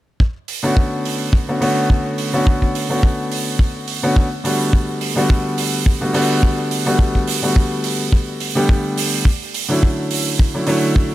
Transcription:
0.20 kick
0.48 open hi-hat
0.63 grand piano D3 A3 B3 C#4 F#4
0.77 kick
1.05 open hi-hat
1.33 kick
1.48 grand piano D3 A3 B3 C#4 F#4
1.61 grand piano D3 A3 B3 C#4 F#4, open hi-hat
1.90 kick
2.18 open hi-hat
2.33 grand piano D3 A3 B3 C#4 F#4
2.47 kick
2.62 kick
2.75 open hi-hat
2.89 grand piano D3 A3 B3 C#4 F#4
3.03 kick
3.31 open hi-hat
3.59 kick
3.88 open hi-hat
4.03 grand piano D3 A3 B3 C#4 F#4
4.16 kick
4.44 grand piano D3 G3 A3 B3 F#4, open hi-hat
4.73 kick
5.01 open hi-hat
5.16 grand piano D3 G3 A3 B3 F#4
5.30 kick
5.58 open hi-hat
5.86 kick
6.01 grand piano D3 G3 A3 B3 F#4
6.13 grand piano D3 G3 A3 B3 F#4, open hi-hat
6.43 kick
6.71 open hi-hat
6.86 grand piano D3 G3 A3 B3 F#4
6.99 kick
7.15 kick
7.27 open hi-hat
7.42 grand piano D3 G3 A3 B3 F#4
7.56 kick
7.84 open hi-hat
8.12 kick
8.40 open hi-hat
8.55 grand piano D3 G3 A3 B3 G4
8.69 kick
8.97 open hi-hat
9.25 kick
9.54 open hi-hat
9.69 grand piano D3 F#3 A3 C#4 E4
9.83 kick
10.11 open hi-hat
10.39 kick
10.54 grand piano D3 F#3 A3 C#4 E4
10.67 grand piano D3 F#3 A3 C#4 E4, open hi-hat
10.96 kick

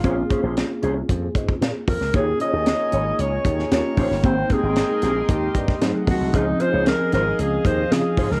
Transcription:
Already playing: alto saxophone F4
0.03 slap bass A#1, tine electric piano A#3 C4 C#4 F4 G#4, clean electric guitar C#4 G#4 C5, kick, closed hi-hat
0.17 muted clean electric guitar stroke
0.30 clean electric guitar C#4 G#4 C5, kick, closed hi-hat
0.43 slap bass A#1, clean electric guitar C#4 G#4 C5
0.56 muted clean electric guitar stroke, snare, closed hi-hat
0.70 muted clean electric guitar stroke
0.82 slap bass C2, clean electric guitar C#4 G#4 C5, closed hi-hat
0.96 muted clean electric guitar stroke
1.09 slap bass F2, muted clean electric guitar stroke, kick, closed hi-hat
1.22 muted clean electric guitar stroke
1.35 slap bass G#2, kick, closed hi-hat
1.48 muted clean electric guitar stroke, kick
1.61 slap bass A#2, muted clean electric guitar stroke, snare, closed hi-hat
1.74 muted clean electric guitar stroke
1.88 slap bass F2, alto saxophone A#4, kick, open hi-hat
2.01 slap bass C#2, muted clean electric guitar stroke, snare
2.13 slap bass D#2, tine electric piano A#3 C#4 D#4 F4 G#4, clean electric guitar D#4 G#4 C#5, alto saxophone G#4, analog synth pad A#4 C#5 D#5 G#5, kick, closed hi-hat
2.27 muted clean electric guitar stroke
2.40 clean electric guitar D#4 G#4 C#5, alto saxophone D#5, closed hi-hat
2.53 slap bass D#2, clean electric guitar D#4 G#4 D#5
2.66 muted clean electric guitar stroke, snare, closed hi-hat
2.79 muted clean electric guitar stroke
2.92 slap bass G#1, clean electric guitar D#4 G#4 C#5, closed hi-hat
3.05 muted clean electric guitar stroke
3.18 slap bass C#2, alto saxophone C#5, muted clean electric guitar stroke, closed hi-hat
3.32 muted clean electric guitar stroke
3.45 slap bass D#2, kick, closed hi-hat
3.58 muted clean electric guitar stroke, snare
3.71 slap bass D#2, tine electric piano A#3 C#4 D#4 F4 G4, analog synth pad A#4 F5 G5, alto saxophone C#5, muted clean electric guitar stroke, snare, closed hi-hat
3.84 muted clean electric guitar stroke
3.97 slap bass A#1, clean electric guitar C#4 G4 C5, kick, open hi-hat
4.11 slap bass G1, muted clean electric guitar stroke, snare
4.23 slap bass G#1, tine electric piano G#3 A#3 C4 D#4 G5, clean electric guitar A#3 C4 G4, analog synth pad A#4 D#5 C6, alto saxophone C5, kick, closed hi-hat
4.50 clean electric guitar A#3 C4 G4, alto saxophone G#4, kick, closed hi-hat
4.63 slap bass G#1, clean electric guitar A#3 C4 G4
4.76 muted clean electric guitar stroke, snare, closed hi-hat
4.89 muted clean electric guitar stroke
5.02 slap bass A#1, clean electric guitar A#3 C4 G4, snare, closed hi-hat
5.15 muted clean electric guitar stroke
5.28 slap bass D#2, alto saxophone G4, muted clean electric guitar stroke, kick, closed hi-hat
5.42 muted clean electric guitar stroke
5.55 slap bass G2, kick, closed hi-hat
5.68 muted clean electric guitar stroke, kick, snare
5.81 slap bass G#2, tine electric piano F#3 A3 C4 D#4 G#4, analog synth pad A3 F#5, muted clean electric guitar stroke, snare, closed hi-hat
5.94 muted clean electric guitar stroke
6.07 slap bass D#2, alto saxophone F#4, kick, open hi-hat
6.20 slap bass C2, muted clean electric guitar stroke
6.33 slap bass C#2, tine electric piano F3 C4 C#4 D#4 G#4, clean electric guitar D#4 F4 C5, alto saxophone D#4, analog synth pad G#4 D#5 F5, kick, closed hi-hat
6.47 muted clean electric guitar stroke
6.60 clean electric guitar D#4 F4 C5, alto saxophone C5, closed hi-hat
6.73 slap bass C#2, clean electric guitar D#4 F4 C#5
6.86 alto saxophone A#4, muted clean electric guitar stroke, snare, closed hi-hat
7.00 muted clean electric guitar stroke
7.12 slap bass G#1, clean electric guitar D#4 F4 C5, alto saxophone A#4, snare, closed hi-hat
7.25 muted clean electric guitar stroke
7.39 slap bass C#2, alto saxophone G#4, muted clean electric guitar stroke, closed hi-hat
7.52 muted clean electric guitar stroke
7.65 slap bass D#2, alto saxophone C5, kick, closed hi-hat
7.78 muted clean electric guitar stroke
7.91 slap bass C#3, tine electric piano F3 C4 C#4 D#4 F4, alto saxophone G#4, muted clean electric guitar stroke, snare, closed hi-hat
8.05 muted clean electric guitar stroke
8.17 slap bass G#2, clean electric guitar D#4 F4 C5, alto saxophone G#4, kick, open hi-hat
8.31 slap bass C#2, alto saxophone A#4, muted clean electric guitar stroke, snare

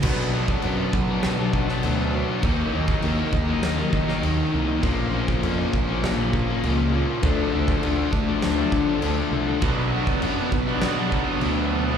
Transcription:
0.02 picked electric bass B1, distorted electric guitar B2 F#3 B3 D4, kick, crash
0.33 distorted electric guitar B2 F#3 B3 D4
0.48 kick
0.62 picked electric bass F#2, distorted electric guitar B2 F#3 B3 D4, crash
0.78 distorted electric guitar F#3 B3 D4
0.93 picked electric bass B1, muted distorted electric guitar stroke, kick
1.09 distorted electric guitar F#3 B3 D4
1.23 picked electric bass B1, snare, crash
1.39 distorted electric guitar F#3 B3 D4
1.53 kick
1.68 distorted electric guitar F#3 B3 D4, snare
1.83 picked electric bass D2, distorted electric guitar B2 F#3 B3 D4, crash
1.99 distorted electric guitar F#3 B3 D4
2.13 distorted electric guitar B2 F#3 B3 D4
2.29 distorted electric guitar F#3 B3 D4
2.43 picked electric bass D#2, distorted electric guitar D#3 F#3 A#3 D#4, kick, crash
2.73 picked electric bass D#2, distorted electric guitar D#3 F#3 A#3 D#4
2.88 kick
3.02 picked electric bass D#2, distorted electric guitar D#3 F#3 A#3 D#4, crash
3.18 distorted electric guitar F#3 A#3 D#4
3.33 picked electric bass D#2, muted distorted electric guitar stroke, kick
3.47 distorted electric guitar F#3 A#3 D#4
3.62 picked electric bass D#2, snare, crash
3.77 distorted electric guitar F#3 A#3 D#4
3.93 picked electric bass D#3, kick
4.07 distorted electric guitar F#3 A#3 D#4, snare
4.21 picked electric bass D#2, distorted electric guitar D#3 F#3 A#3 D#4, crash
4.37 distorted electric guitar F#3 A#3 D#4
4.52 picked electric bass C2, distorted electric guitar D#3 F#3 A#3 D#4
4.67 distorted electric guitar F#3 A#3 D#4
4.82 picked electric bass A#1, distorted electric guitar A#2 F3 A#3 C#4, kick, crash
5.12 distorted electric guitar A#2 F3 A#3 C#4
5.28 kick
5.42 picked electric bass F2, distorted electric guitar A#2 F3 A#3 C#4, crash
5.57 distorted electric guitar F3 A#3 C#4
5.73 picked electric bass A#1, muted distorted electric guitar stroke, kick
5.88 distorted electric guitar F3 A#3 C#4
6.03 picked electric bass A#1, snare, crash
6.18 distorted electric guitar F3 A#3 C#4
6.33 kick
6.48 distorted electric guitar F3 A#3 C#4
6.63 picked electric bass C#2, distorted electric guitar A#2 F3 A#3 C#4, crash
6.78 distorted electric guitar F3 A#3 C#4
6.92 distorted electric guitar A#2 F3 A#3 C#4
7.07 distorted electric guitar F3 A#3 C#4
7.22 picked electric bass D2, distorted electric guitar D3 F3 A3 D4, kick, crash
7.53 picked electric bass D2, distorted electric guitar D3 F3 A3 D4
7.68 kick
7.82 picked electric bass D2, distorted electric guitar D3 F3 A3 D4, crash
7.97 distorted electric guitar F3 A3 D4
8.12 picked electric bass D2, muted distorted electric guitar stroke, kick
8.27 distorted electric guitar F3 A3 D4
8.42 picked electric bass D2, snare, crash
8.57 distorted electric guitar F3 A3 D4
8.72 picked electric bass D3, kick
8.87 distorted electric guitar F3 A3 D4
9.02 picked electric bass D2, distorted electric guitar D3 F3 A3 D4, crash
9.17 distorted electric guitar F3 A3 D4
9.31 picked electric bass C2, distorted electric guitar D3 F3 A3 D4
9.46 distorted electric guitar F3 A3 D4
9.61 picked electric bass B1, distorted electric guitar B2 F#3 B3 D4, overdriven electric guitar F#4, kick, crash
9.92 distorted electric guitar B2 F#3 B3 D4, overdriven electric guitar F#4
10.07 kick
10.21 picked electric bass F#2, distorted electric guitar B2 F#3 B3 D4, overdriven electric guitar F#4, crash
10.36 distorted electric guitar F#3 B3 D4, overdriven electric guitar F#4
10.52 picked electric bass B1, muted distorted electric guitar stroke, muted overdriven electric guitar stroke, kick
10.67 distorted electric guitar F#3 B3 D4, overdriven electric guitar F#4
10.81 picked electric bass B1, snare, crash
10.97 distorted electric guitar F#3 B3 D4, overdriven electric guitar F#4
11.12 overdriven electric guitar F#3 B3 D4 F#4, kick
11.27 distorted electric guitar F#3 B3 D4
11.41 picked electric bass D2, distorted electric guitar B2 F#3 B3 D4, crash
11.46 overdriven electric guitar F#4
11.57 distorted electric guitar F#3 B3 D4, overdriven electric guitar F#4
11.71 distorted electric guitar B2 F#3 B3 D4
11.87 distorted electric guitar F#3 B3 D4, overdriven electric guitar F#4

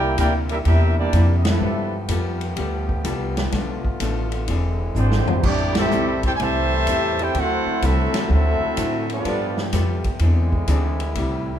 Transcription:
Already playing: upright bass C2, trombone section A#2 D3 A#3 C4 E4 G4, trumpet section E4 A#4 D5 G5
0.17 upright bass D2, hollow-body jazz guitar C3 A#3 D4 E4, trombone section A#3 E4 G4, trumpet section E4 A#4 D5 G5, kick, hi-hat pedal, ride
0.49 trombone section G3 A#3 E4, trumpet section D4 G4 A#4 E5, ride
0.65 upright bass E2, hollow-body jazz guitar C3 A#3 D4 E4, trombone section G3 A#3 E4, trumpet section D4 G4 A#4 E5, kick, ride
0.99 trombone section G3 A#3 D4, trumpet section A#3 E4 G4 D5
1.13 upright bass F2, hollow-body jazz guitar C3 A#3 D4 E4, kick, hi-hat pedal, ride
1.38 trumpet section D#5
1.45 trombone section F3 B3 E4, trumpet section D4 A4 B4 E5, snare, ride
1.60 upright bass G2, trombone section F3 A3 B3 G4, hollow-body jazz guitar G3 B3 F4 A4
2.08 upright bass F2, hollow-body jazz guitar G3 B3 F4 A4, kick, hi-hat pedal, ride
2.41 ride
2.56 upright bass D2, hollow-body jazz guitar G3 B3 F4 A4, kick, ride
2.89 kick
3.04 upright bass C2, hollow-body jazz guitar G3 B3 F4 A4, kick, hi-hat pedal, ride
3.37 snare, ride
3.52 upright bass B1, hollow-body jazz guitar B2 F3 A3 D4, trombone section D3 A3 F4, kick, snare, ride
3.84 muted upright bass stroke, kick
4.00 upright bass A1, hollow-body jazz guitar B2 F3 A3 D4, kick, hi-hat pedal, ride
4.32 ride
4.48 upright bass E1, hollow-body jazz guitar E3 C4 D4 G#4, trombone section G#3 C4 E4, kick, ride
4.95 upright bass G#1, trombone section D3 G#3 C4, hollow-body jazz guitar E3 C4 D4 G#4, trumpet section G#3 D4 G4 C5, hi-hat pedal
5.12 snare
5.27 floor tom
5.43 upright bass A1, hollow-body jazz guitar A2 G3 C4, trombone section G3 A3 C4 D4, trumpet section B3 E4 D5, kick, crash
5.47 hollow-body jazz guitar E4, trumpet section G4
5.75 trombone section G3 C4 E4, trumpet section C4 G4 A4 E5, snare, ride
5.91 upright bass B1, hollow-body jazz guitar A2 G3 C4 E4, hi-hat pedal
6.23 trombone section C4 E4 G4, trumpet section E4 A4 C5 G5, kick, ride
6.36 upright bass C2, hollow-body jazz guitar A2, trumpet section G#5, kick
6.40 trombone section C3 E3 A3, hollow-body jazz guitar G3 C4 E4, trumpet section G4 C5 E5 A5, ride
6.87 upright bass E2, hollow-body jazz guitar A2 G3 C4 E4, kick, hi-hat pedal, ride
7.19 trombone section C4 E4 G4, trumpet section E4 A4 C5 G5, ride
7.34 upright bass D2, hollow-body jazz guitar D3 F#3 C4 E4, trombone section D3 F#3 A3 C4 F#4, trumpet section E4 A4 C5 F#5, kick, ride
7.66 muted upright bass stroke
7.82 upright bass C2, hollow-body jazz guitar D3 F#3 C4 E4, trombone section A3 C4 E4, trumpet section C4 A4 E5, kick, hi-hat pedal, ride
7.86 trumpet section F#4
8.13 muted upright bass stroke, snare, ride
8.30 upright bass D2, hollow-body jazz guitar D3 F#3 C4 E4, trombone section A3 C4 E4, trumpet section C4 F#4 A4 E5, kick
8.61 muted upright bass stroke
8.77 upright bass A2, hollow-body jazz guitar D3 F#3 C4 E4, kick, hi-hat pedal, ride
9.10 trombone section F3 B3 D4, trumpet section B3 F4 A4 D5, ride
9.25 upright bass G2, trombone section F3 A3 B3 G4, hollow-body jazz guitar G3 B3 F4 A4, kick, ride
9.57 snare
9.73 upright bass F2, hollow-body jazz guitar G3 B3 F4 A4, kick, snare, hi-hat pedal, ride
10.04 muted upright bass stroke, kick, ride
10.19 upright bass E2, trombone section D3 G#3 C4 E4, hollow-body jazz guitar E3 C4, kick, ride
10.23 hollow-body jazz guitar D4 G#4
10.52 kick
10.67 upright bass D2, hollow-body jazz guitar E3 C4 D4 G#4, kick, hi-hat pedal, ride
11.00 ride
11.15 upright bass C2, hollow-body jazz guitar A2 G3 C4 E4, trombone section C3 G3 A3, kick, ride

